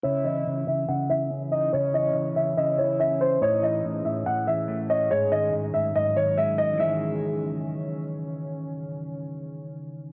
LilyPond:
<<
  \new Staff \with { instrumentName = "Grand piano" } { \time 4/4 \key cis \minor \tempo 4 = 142 cis''8 dis''8 r8 e''8 fis''8 e''4 dis''8 | cis''8 dis''8 r8 e''8 dis''8 cis''8 e''8 bis'8 | cis''8 dis''8 r8 e''8 fis''8 e''4 dis''8 | cis''8 dis''8 r8 e''8 dis''8 cis''8 e''8 dis''8 |
e''2. r4 | r1 | }
  \new Staff \with { instrumentName = "Soft synth lead" } { \time 4/4 \key cis \minor e''2 r4. dis''8 | cis''2 e''2 | dis''2 r4. cis''8 | gis'2 r2 |
gis'2. r4 | r1 | }
  \new Staff \with { instrumentName = "Ambient pad" } { \clef bass \time 4/4 \key cis \minor <e cis' e'>1~ | <e cis' e'>1 | <a, gis'>1 | <gis, fis>1 |
<cis cis'>1~ | <cis cis'>1 | }
  \new Staff \with { instrumentName = "Clean electric guitar" } { \clef bass \time 4/4 \key cis \minor cis8 e8 cis8 cis8 cis8 e8 cis'4 | cis8 e8 cis8 cis8 cis8 e8 cis'4 | a,8 e8 a,8 a,8 a,8 e8 a4 | gis,8 dis8 gis,8 gis,8 gis,8 dis8 gis4 |
<dis e gis cis'>1~ | <dis e gis cis'>1 | }
>>